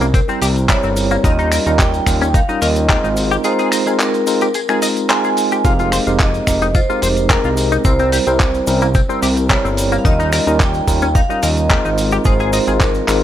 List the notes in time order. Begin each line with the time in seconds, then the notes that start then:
Already playing: C2 A#4
0.01 A#3, closed hi-hat, tambourine, cabasa
0.14 C4, kick, closed hi-hat, tambourine, cabasa
0.28 G3 C4 E4 A#4, tambourine, cabasa
0.42 C2 G4, open hi-hat, tambourine, cabasa
0.56 closed hi-hat, tambourine, cabasa
0.68 G3 C4 E4 A#4 C#5, kick, clap, closed hi-hat, tambourine, cabasa
0.83 G1 C4, tambourine, cabasa
0.96 open hi-hat, tambourine, cabasa
1.11 A#3, closed hi-hat, tambourine, cabasa
1.23 D#2 G3 C#4 D#4 F4 A#4 D#5, kick, closed hi-hat, tambourine, cabasa
1.39 D#4, closed hi-hat, tambourine, cabasa
1.52 A#4, finger snap, open hi-hat, tambourine, cabasa
1.66 D#2 G3 C#4 D#4 F4 A#4, closed hi-hat, tambourine, cabasa
1.79 G5, kick, clap, closed hi-hat, tambourine, cabasa
1.94 closed hi-hat, tambourine, cabasa
2.06 D#2 G3 C#4 D#4 F4 A#4, finger snap, kick, open hi-hat, tambourine, cabasa
2.21 C#4, closed hi-hat, tambourine, cabasa
2.34 D#4 F5, kick, closed hi-hat, tambourine, cabasa
2.48 G3 C#4 D#4 F4 A#4, tambourine, cabasa
2.62 D#2 A#4 D#5, open hi-hat, tambourine, cabasa
2.76 closed hi-hat, tambourine, cabasa
2.89 G#3 C4 D#4 F4 G4 A#4, kick, clap, closed hi-hat, tambourine, cabasa
3.04 G#1 D#4, tambourine, cabasa
3.16 open hi-hat, tambourine, cabasa
3.31 G4, closed hi-hat, tambourine, cabasa
3.44 G#3 C4 D#4 F4 G#4 A#4 C5, closed hi-hat, tambourine, cabasa
3.59 G#4, closed hi-hat, tambourine, cabasa
3.72 D#5, finger snap, open hi-hat, tambourine, cabasa
3.86 G#3 C4 D#4 F4 G#4 A#4, closed hi-hat, tambourine, cabasa
3.99 A#4, clap, closed hi-hat, tambourine, cabasa
4.14 closed hi-hat, tambourine, cabasa
4.26 G#3 C4 D#4 F4 A#4, open hi-hat, tambourine, cabasa
4.41 G4, closed hi-hat, tambourine, cabasa
4.54 G#4, closed hi-hat, tambourine, cabasa
4.69 G#3 C4 D#4 F4 G#4 A#4, finger snap, tambourine, cabasa
4.82 D#5, open hi-hat, tambourine, cabasa
4.97 closed hi-hat, tambourine, cabasa
5.09 G#3 C4 D#4 F4 A#4 C5 G#5, clap, closed hi-hat, tambourine, cabasa
5.24 G#4, tambourine, cabasa
5.37 open hi-hat, tambourine, cabasa
5.52 G4, closed hi-hat, tambourine, cabasa
5.64 F1 G#3 C4 D#4 F4 G4 A#4 F5, kick, closed hi-hat, tambourine, cabasa
5.79 F4, closed hi-hat, tambourine, cabasa
5.92 C5, finger snap, open hi-hat, tambourine, cabasa
6.07 F1 G#3 C4 D#4 F4 G4 A#4, closed hi-hat, tambourine, cabasa
6.19 D#5, kick, clap, closed hi-hat, tambourine, cabasa
6.34 closed hi-hat, tambourine, cabasa
6.47 F1 G#3 C4 D#4 G4 A#4, finger snap, kick, open hi-hat, tambourine, cabasa
6.62 D#4, closed hi-hat, tambourine, cabasa
6.75 F4 C5, kick, closed hi-hat, tambourine, cabasa
6.89 G#3 C4 D#4 F4 G4 A#4, tambourine, cabasa
7.02 F1 C5, open hi-hat, tambourine, cabasa
7.17 closed hi-hat, tambourine, cabasa
7.29 G#3 C4 D#4 G4 A#4, kick, clap, closed hi-hat, tambourine, cabasa
7.44 C2 F4, tambourine, cabasa
7.57 open hi-hat, tambourine, cabasa
7.72 D#4, closed hi-hat, tambourine, cabasa
7.84 C2 G3 C4 E4 A#4 C5, kick, closed hi-hat, tambourine, cabasa
7.99 C4, closed hi-hat, tambourine, cabasa
8.12 G4, open hi-hat, tambourine, cabasa
8.27 C2 G3 C4 E4 A#4, closed hi-hat, tambourine, cabasa
8.40 kick, clap, closed hi-hat, tambourine, cabasa
8.54 closed hi-hat, tambourine, cabasa
8.67 C2 G3 C4 C#4 E4 A#4, open hi-hat, tambourine, cabasa
8.81 A#3, closed hi-hat, tambourine, cabasa
8.94 C4, kick, closed hi-hat, tambourine, cabasa
9.09 G3 C4 E4 A#4, tambourine, cabasa
9.22 C2 G4, open hi-hat, tambourine, cabasa
9.37 closed hi-hat, tambourine, cabasa
9.49 G3 C4 E4 A#4 C#5, kick, clap, closed hi-hat, tambourine, cabasa
9.64 G1 C4, tambourine, cabasa
9.77 open hi-hat, tambourine, cabasa
9.92 A#3, tambourine, cabasa
9.98 F5
10.04 D#2 G3 C#4 D#4 F4 A#4 D#5, kick, closed hi-hat, tambourine, cabasa
10.20 D#4, closed hi-hat, tambourine, cabasa
10.32 A#4, finger snap, open hi-hat, tambourine, cabasa
10.46 D#2 G3 C#4 D#4 F4 A#4, closed hi-hat, tambourine, cabasa
10.60 G5, kick, clap, closed hi-hat, tambourine, cabasa
10.74 closed hi-hat, tambourine, cabasa
10.87 D#2 G3 C#4 D#4 F4 A#4, kick, open hi-hat, tambourine, cabasa
11.02 C#4, closed hi-hat, tambourine, cabasa
11.15 D#4 F5, kick, closed hi-hat, tambourine, cabasa
11.29 G3 C#4 D#4 F4 A#4, tambourine, cabasa
11.43 D#2 A#4 D#5, open hi-hat, tambourine, cabasa
11.57 closed hi-hat, tambourine, cabasa
11.69 G#3 C4 D#4 F4 G4 A#4, kick, clap, closed hi-hat, tambourine, cabasa
11.85 G#1 D#4, tambourine, cabasa
11.98 open hi-hat, tambourine, cabasa
12.11 G4, tambourine, cabasa
12.25 G#1 G#3 C4 D#4 F4 G#4 A#4 C5, kick, closed hi-hat, tambourine, cabasa
12.40 G#4, closed hi-hat, tambourine, cabasa
12.53 D#5, open hi-hat, tambourine, cabasa
12.67 G#1 G#3 C4 D#4 F4 G#4 A#4, closed hi-hat, tambourine, cabasa
12.80 A#4, kick, clap, closed hi-hat, tambourine, cabasa
12.94 closed hi-hat, tambourine, cabasa
13.07 G#1 G#3 C4 D#4 F4 A#4, finger snap, clap, open hi-hat, tambourine, cabasa